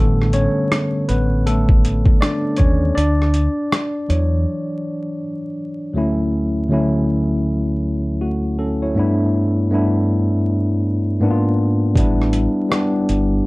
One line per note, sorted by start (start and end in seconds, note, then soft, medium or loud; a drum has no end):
0.00 0.46 A1 loud
0.00 2.92 D3 medium
0.00 2.92 G3 medium
0.00 0.31 A3 medium
0.00 1.09 B3 medium
0.00 0.31 A4 medium
0.22 cross-stick soft
0.33 1.05 C#4 medium
0.33 1.04 C#5 loud
0.33 closed hi-hat medium
0.72 cross-stick loud
0.72 closed hi-hat medium
1.09 2.02 A1 medium
1.09 1.44 B3 medium
1.09 1.47 B4 medium
1.09 closed hi-hat medium
1.47 2.18 A3 medium
1.47 2.17 A4 loud
1.47 closed hi-hat medium
1.69 kick medium
1.85 closed hi-hat medium
2.06 kick medium
2.21 2.57 D4 medium
2.21 2.56 D5 loud
2.21 cross-stick loud
2.21 closed hi-hat medium
2.56 2.91 D#2 medium
2.56 2.94 C#4 medium
2.56 2.97 C#5 loud
2.56 kick medium
2.56 closed hi-hat medium
2.95 3.47 D2 loud
2.95 5.18 D4 medium
2.95 5.16 D5 loud
2.95 closed hi-hat medium
3.22 cross-stick soft
3.34 closed hi-hat medium
3.72 cross-stick loud
3.72 closed hi-hat medium
4.08 4.45 E2 medium
4.08 5.17 E3 soft
4.08 5.17 F#3 soft
4.08 5.17 C#5 medium
4.08 closed hi-hat medium
5.93 6.60 D2 medium
5.93 6.61 F#3 medium
5.93 6.61 A3 medium
5.93 6.62 C#4 medium
5.98 6.62 E4 medium
6.69 7.98 D2 medium
6.69 7.99 F#3 medium
6.69 8.00 A3 medium
6.69 8.00 C#4 medium
6.74 8.01 E4 medium
8.21 8.57 A3 soft
8.21 8.57 F#4 medium
8.59 8.80 C#4 medium
8.59 8.80 A4 medium
8.82 8.98 E4 medium
8.82 9.17 C#5 medium
8.95 9.61 G2 medium
8.95 9.61 A3 medium
8.95 9.62 B3 medium
8.95 9.62 D4 medium
8.99 9.63 E4 medium
9.70 10.99 G2 medium
9.70 10.99 A3 medium
9.70 11.00 B3 medium
9.70 11.01 D4 medium
9.74 11.01 E4 medium
11.20 11.86 G#2 medium
11.20 11.86 A#3 medium
11.20 11.87 B3 medium
11.20 11.87 D4 medium
11.24 11.30 E4 medium
11.31 11.91 F4 medium
11.95 12.46 A1 loud
11.95 12.61 G3 medium
11.95 12.61 B3 medium
11.95 12.62 D4 medium
11.95 kick loud
11.95 closed hi-hat medium
11.99 12.63 E4 medium
12.22 cross-stick soft
12.33 closed hi-hat medium
12.69 13.47 G3 medium
12.69 13.47 B3 medium
12.69 13.47 D4 medium
12.69 cross-stick medium
12.69 closed hi-hat medium
12.74 13.47 G4 medium
13.09 13.40 G1 medium
13.09 closed hi-hat medium